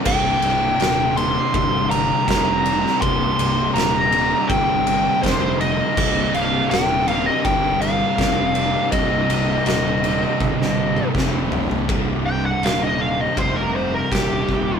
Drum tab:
CC |x---------------|----------------|x---------------|----------------|
RD |--x-x-x-x-x-x-x-|x-x-x-x-x-x-x-x-|--x-x-x-x-x-x-x-|x-x-x-x---------|
SD |----o-------o--o|----o-------o---|----o-------o---|----o----o--o---|
T1 |----------------|----------------|----------------|--------o-------|
T2 |----------------|----------------|----------------|-----------o----|
FT |----------------|----------------|----------------|--------------oo|
BD |o-------o---o---|o-------o---o---|o-------o---o---|o-------o---o---|

CC |----------------|
RD |b---b---b---b---|
SD |----o-------o---|
T1 |----------------|
T2 |----------------|
FT |----------------|
BD |o-------o---o-o-|